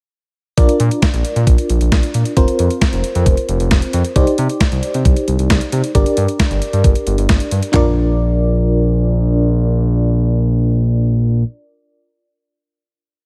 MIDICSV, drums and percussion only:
0, 0, Header, 1, 2, 480
1, 0, Start_track
1, 0, Key_signature, -2, "major"
1, 0, Tempo, 447761
1, 617, Time_signature, 4, 2, 24, 8
1, 14212, End_track
2, 0, Start_track
2, 0, Title_t, "Drums"
2, 617, Note_on_c, 9, 36, 106
2, 617, Note_on_c, 9, 42, 64
2, 724, Note_off_c, 9, 36, 0
2, 724, Note_off_c, 9, 42, 0
2, 738, Note_on_c, 9, 42, 50
2, 845, Note_off_c, 9, 42, 0
2, 855, Note_on_c, 9, 42, 74
2, 963, Note_off_c, 9, 42, 0
2, 979, Note_on_c, 9, 42, 47
2, 1086, Note_off_c, 9, 42, 0
2, 1096, Note_on_c, 9, 36, 110
2, 1098, Note_on_c, 9, 42, 80
2, 1100, Note_on_c, 9, 38, 100
2, 1203, Note_off_c, 9, 36, 0
2, 1205, Note_off_c, 9, 42, 0
2, 1207, Note_off_c, 9, 38, 0
2, 1219, Note_on_c, 9, 42, 49
2, 1326, Note_off_c, 9, 42, 0
2, 1336, Note_on_c, 9, 42, 68
2, 1443, Note_off_c, 9, 42, 0
2, 1460, Note_on_c, 9, 42, 55
2, 1567, Note_off_c, 9, 42, 0
2, 1576, Note_on_c, 9, 36, 109
2, 1578, Note_on_c, 9, 42, 76
2, 1683, Note_off_c, 9, 36, 0
2, 1685, Note_off_c, 9, 42, 0
2, 1697, Note_on_c, 9, 42, 46
2, 1804, Note_off_c, 9, 42, 0
2, 1818, Note_on_c, 9, 42, 69
2, 1925, Note_off_c, 9, 42, 0
2, 1940, Note_on_c, 9, 42, 50
2, 2047, Note_off_c, 9, 42, 0
2, 2057, Note_on_c, 9, 42, 72
2, 2058, Note_on_c, 9, 36, 112
2, 2059, Note_on_c, 9, 38, 117
2, 2165, Note_off_c, 9, 42, 0
2, 2166, Note_off_c, 9, 36, 0
2, 2166, Note_off_c, 9, 38, 0
2, 2177, Note_on_c, 9, 42, 58
2, 2285, Note_off_c, 9, 42, 0
2, 2297, Note_on_c, 9, 42, 76
2, 2404, Note_off_c, 9, 42, 0
2, 2417, Note_on_c, 9, 42, 55
2, 2524, Note_off_c, 9, 42, 0
2, 2538, Note_on_c, 9, 36, 104
2, 2538, Note_on_c, 9, 42, 65
2, 2645, Note_off_c, 9, 36, 0
2, 2645, Note_off_c, 9, 42, 0
2, 2658, Note_on_c, 9, 42, 52
2, 2765, Note_off_c, 9, 42, 0
2, 2776, Note_on_c, 9, 42, 74
2, 2883, Note_off_c, 9, 42, 0
2, 2900, Note_on_c, 9, 42, 47
2, 3007, Note_off_c, 9, 42, 0
2, 3017, Note_on_c, 9, 36, 106
2, 3019, Note_on_c, 9, 42, 81
2, 3020, Note_on_c, 9, 38, 98
2, 3124, Note_off_c, 9, 36, 0
2, 3126, Note_off_c, 9, 42, 0
2, 3127, Note_off_c, 9, 38, 0
2, 3139, Note_on_c, 9, 42, 49
2, 3246, Note_off_c, 9, 42, 0
2, 3257, Note_on_c, 9, 42, 67
2, 3364, Note_off_c, 9, 42, 0
2, 3380, Note_on_c, 9, 42, 56
2, 3487, Note_off_c, 9, 42, 0
2, 3496, Note_on_c, 9, 36, 113
2, 3498, Note_on_c, 9, 42, 72
2, 3603, Note_off_c, 9, 36, 0
2, 3605, Note_off_c, 9, 42, 0
2, 3617, Note_on_c, 9, 42, 46
2, 3724, Note_off_c, 9, 42, 0
2, 3737, Note_on_c, 9, 42, 70
2, 3844, Note_off_c, 9, 42, 0
2, 3860, Note_on_c, 9, 42, 49
2, 3967, Note_off_c, 9, 42, 0
2, 3976, Note_on_c, 9, 42, 73
2, 3978, Note_on_c, 9, 36, 109
2, 3978, Note_on_c, 9, 38, 112
2, 4084, Note_off_c, 9, 42, 0
2, 4085, Note_off_c, 9, 36, 0
2, 4086, Note_off_c, 9, 38, 0
2, 4096, Note_on_c, 9, 42, 55
2, 4204, Note_off_c, 9, 42, 0
2, 4216, Note_on_c, 9, 42, 77
2, 4324, Note_off_c, 9, 42, 0
2, 4337, Note_on_c, 9, 42, 56
2, 4444, Note_off_c, 9, 42, 0
2, 4457, Note_on_c, 9, 36, 105
2, 4457, Note_on_c, 9, 42, 66
2, 4565, Note_off_c, 9, 36, 0
2, 4565, Note_off_c, 9, 42, 0
2, 4579, Note_on_c, 9, 42, 51
2, 4686, Note_off_c, 9, 42, 0
2, 4695, Note_on_c, 9, 42, 78
2, 4803, Note_off_c, 9, 42, 0
2, 4819, Note_on_c, 9, 42, 48
2, 4926, Note_off_c, 9, 42, 0
2, 4936, Note_on_c, 9, 36, 110
2, 4938, Note_on_c, 9, 42, 78
2, 4939, Note_on_c, 9, 38, 103
2, 5043, Note_off_c, 9, 36, 0
2, 5045, Note_off_c, 9, 42, 0
2, 5046, Note_off_c, 9, 38, 0
2, 5058, Note_on_c, 9, 42, 50
2, 5165, Note_off_c, 9, 42, 0
2, 5176, Note_on_c, 9, 42, 68
2, 5283, Note_off_c, 9, 42, 0
2, 5299, Note_on_c, 9, 42, 57
2, 5406, Note_off_c, 9, 42, 0
2, 5416, Note_on_c, 9, 36, 116
2, 5418, Note_on_c, 9, 42, 72
2, 5523, Note_off_c, 9, 36, 0
2, 5525, Note_off_c, 9, 42, 0
2, 5537, Note_on_c, 9, 42, 48
2, 5644, Note_off_c, 9, 42, 0
2, 5657, Note_on_c, 9, 42, 70
2, 5764, Note_off_c, 9, 42, 0
2, 5779, Note_on_c, 9, 42, 49
2, 5886, Note_off_c, 9, 42, 0
2, 5896, Note_on_c, 9, 42, 73
2, 5897, Note_on_c, 9, 38, 117
2, 5898, Note_on_c, 9, 36, 111
2, 6003, Note_off_c, 9, 42, 0
2, 6005, Note_off_c, 9, 36, 0
2, 6005, Note_off_c, 9, 38, 0
2, 6015, Note_on_c, 9, 42, 59
2, 6122, Note_off_c, 9, 42, 0
2, 6136, Note_on_c, 9, 42, 74
2, 6243, Note_off_c, 9, 42, 0
2, 6257, Note_on_c, 9, 42, 56
2, 6364, Note_off_c, 9, 42, 0
2, 6377, Note_on_c, 9, 36, 104
2, 6378, Note_on_c, 9, 42, 67
2, 6484, Note_off_c, 9, 36, 0
2, 6485, Note_off_c, 9, 42, 0
2, 6498, Note_on_c, 9, 42, 51
2, 6605, Note_off_c, 9, 42, 0
2, 6613, Note_on_c, 9, 42, 78
2, 6721, Note_off_c, 9, 42, 0
2, 6737, Note_on_c, 9, 42, 48
2, 6844, Note_off_c, 9, 42, 0
2, 6856, Note_on_c, 9, 36, 104
2, 6857, Note_on_c, 9, 42, 81
2, 6858, Note_on_c, 9, 38, 99
2, 6963, Note_off_c, 9, 36, 0
2, 6964, Note_off_c, 9, 42, 0
2, 6965, Note_off_c, 9, 38, 0
2, 6978, Note_on_c, 9, 42, 48
2, 7085, Note_off_c, 9, 42, 0
2, 7094, Note_on_c, 9, 42, 67
2, 7201, Note_off_c, 9, 42, 0
2, 7218, Note_on_c, 9, 42, 54
2, 7325, Note_off_c, 9, 42, 0
2, 7335, Note_on_c, 9, 36, 112
2, 7336, Note_on_c, 9, 42, 77
2, 7442, Note_off_c, 9, 36, 0
2, 7443, Note_off_c, 9, 42, 0
2, 7455, Note_on_c, 9, 42, 47
2, 7563, Note_off_c, 9, 42, 0
2, 7576, Note_on_c, 9, 42, 70
2, 7683, Note_off_c, 9, 42, 0
2, 7698, Note_on_c, 9, 42, 50
2, 7805, Note_off_c, 9, 42, 0
2, 7815, Note_on_c, 9, 42, 74
2, 7816, Note_on_c, 9, 38, 115
2, 7817, Note_on_c, 9, 36, 114
2, 7922, Note_off_c, 9, 42, 0
2, 7924, Note_off_c, 9, 36, 0
2, 7924, Note_off_c, 9, 38, 0
2, 7935, Note_on_c, 9, 42, 55
2, 8042, Note_off_c, 9, 42, 0
2, 8055, Note_on_c, 9, 42, 80
2, 8163, Note_off_c, 9, 42, 0
2, 8175, Note_on_c, 9, 42, 58
2, 8282, Note_off_c, 9, 42, 0
2, 8295, Note_on_c, 9, 39, 83
2, 8295, Note_on_c, 9, 43, 98
2, 8296, Note_on_c, 9, 36, 101
2, 8402, Note_off_c, 9, 39, 0
2, 8402, Note_off_c, 9, 43, 0
2, 8404, Note_off_c, 9, 36, 0
2, 14212, End_track
0, 0, End_of_file